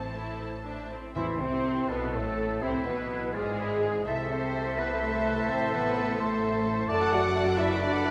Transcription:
Already playing: double bass section A1, cello section A2, harp A2 E3 E4, viola section C4, violin section A4 C5 A5
0.15 viola section A3 E4, harp E4, violin section C5 E5
0.39 viola section E4, violin section A4 C5, harp C5
0.65 viola section D4, harp A4, violin section C5 E5
0.91 viola section C4, harp E4, violin section A4 C5
1.15 double bass section E2, timpani A2, harp A2, bassoon E3, cello section E3, french horn section E4, violin section E4 E5, viola section E4, flute section E4, oboe C5, clarinet E5
1.39 double bass section C2, bassoon C3, cello section C3, harp E3, french horn section C4, violin section C4 C5, flute section C4, viola section C4, clarinet C5
1.65 harp E4
1.89 double bass section B1, bassoon B2, cello section B2, french horn section B3, violin section B3 B4, viola section B3, oboe A4, flute section B4, clarinet B4, harp C5
2.13 double bass section A1, bassoon A2, cello section A2, violin section A3 A4, french horn section A3, viola section A3, harp A4, flute section A4, clarinet A4
2.38 harp E4
2.61 double bass section C2, harp A2, bassoon C3, cello section C3, french horn section C4, violin section C4 C5, viola section C4, flute section C4, oboe E4, clarinet C5
2.85 double bass section B1, bassoon B2, cello section B2, harp E3, violin section B3 B4, french horn section B3, viola section B3, flute section B4, clarinet B4
3.11 harp E4
3.34 double bass section G#1, bassoon G#2, cello section G#2, violin section G#3 G#4, french horn section G#3, viola section G#3, oboe F4, flute section G#4, clarinet G#4, harp D5
3.59 oboe E4, harp B4
3.83 harp E4, oboe G#4
4.07 double bass section C2, cello section C3, harp C3, bassoon A3, french horn section E4, viola section A4 C5, oboe A4, violin section E5 A5, flute section E5, clarinet E5
4.30 harp A3, french horn section C4, violin section C5, clarinet C5
4.55 harp E4
4.77 french horn section B3, violin section B4, oboe B4, clarinet B4, harp C5
5.02 french horn section A3, clarinet A4, violin section A4, harp A4
5.26 harp E4
5.49 double bass section A1, harp A2, cello section A2, french horn section C4, oboe A4, violin section C5, clarinet C5
5.73 harp E3, french horn section B3, clarinet B4, violin section B4
5.97 harp E4
6.19 french horn section A3, violin section A4, clarinet A4, harp C5, oboe C5
6.43 harp A4
6.67 harp E4
6.89 double bass section F#1, cello section F#2, harp F#2, bassoon A3, viola section F#4 D5, french horn section A4, oboe D5, flute section D5, violin section A5, clarinet A5
7.01 viola section A4 F#5, violin section F#5 D6
7.12 harp F#3, bassoon A3, viola section F#4 D5, french horn section F#4, flute section D5, violin section F#5 A5, clarinet F#5
7.24 viola section A4 F#5, violin section F#5 D6
7.35 bassoon A3, viola section F#4 D5, harp F#4, flute section D5, violin section A5
7.47 viola section A4 F#5, violin section F#5 D6
7.57 bassoon A3, french horn section E4, viola section F#4 D5, oboe B4, flute section D5, harp D5, violin section E5 A5, clarinet E5
7.70 viola section A4 F#5, violin section F#5 D6
7.80 bassoon A3, french horn section D4, viola section F#4 D5, harp A4, violin section D5 A5, flute section D5, clarinet D5
7.93 viola section A4 F#5, violin section F#5 D6
8.04 bassoon A3, viola section F#4 D5, harp F#4, flute section D5, violin section A5

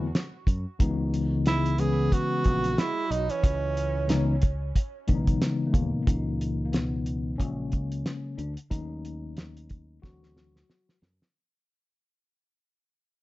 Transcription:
Already playing: fingered electric bass E2, trombone A3, tenor saxophone F#4
0.15 snare, closed hi-hat
0.47 fingered electric bass F#2, kick, closed hi-hat
0.79 fingered electric bass C#2, tine electric piano C#3 E3 G#3 B3 D#4, kick, closed hi-hat
1.14 closed hi-hat
1.46 trombone G#3, tenor saxophone E4, snare, closed hi-hat
1.66 closed hi-hat
1.78 tine electric piano C#3 E3 G#3 B3 C#4, trombone B3, tenor saxophone G#4, closed hi-hat
2.11 trombone B3, tenor saxophone F#4, kick, closed hi-hat
2.44 fingered electric bass A#1, kick, closed hi-hat
2.64 closed hi-hat
2.76 trombone G#3, tenor saxophone E4, snare, closed hi-hat
3.09 fingered electric bass B1, trombone F#3, tenor saxophone D#4, closed hi-hat
3.29 trombone E3, tenor saxophone C#4, closed hi-hat
3.44 fingered electric bass C#2, kick, closed hi-hat
3.77 closed hi-hat
4.08 tine electric piano C#3 E3 G#3 B3 D#4, snare, closed hi-hat
4.42 kick, closed hi-hat
4.76 kick, closed hi-hat
5.07 fingered electric bass B1, tine electric piano C#3 E3 G#3 B3 D4, kick, closed hi-hat
5.15 tine electric piano D#4
5.27 kick, closed hi-hat
5.42 snare, closed hi-hat
5.67 tine electric piano A3
5.73 fingered electric bass D#2, tine electric piano A#2 A#3, kick, closed hi-hat
6.07 fingered electric bass C#2, tine electric piano E3 C#4 D#4, kick, closed hi-hat
6.41 closed hi-hat
6.66 tine electric piano A#3
6.72 tine electric piano B2 B3, snare, closed hi-hat
7.06 closed hi-hat
7.38 fingered electric bass A#1, tine electric piano C#3 F#3 G#3 A#3 C#4, kick, closed hi-hat
7.72 fingered electric bass C#2, kick, closed hi-hat
7.92 closed hi-hat
8.06 snare, closed hi-hat
8.38 fingered electric bass D2, tine electric piano D3 D4, closed hi-hat
8.57 closed hi-hat
8.70 fingered electric bass D#2, tine electric piano D#3 F#3 A3 C#4 D#4, kick, closed hi-hat
9.05 closed hi-hat
9.37 snare, closed hi-hat
9.57 closed hi-hat
9.69 kick, closed hi-hat
10.02 fingered electric bass D2, tine electric piano E3 F#3 C4 F#4, kick, snare
10.23 snare
10.37 snare
10.56 snare
10.70 snare
10.89 snare
11.02 fingered electric bass F#2, snare
11.22 snare

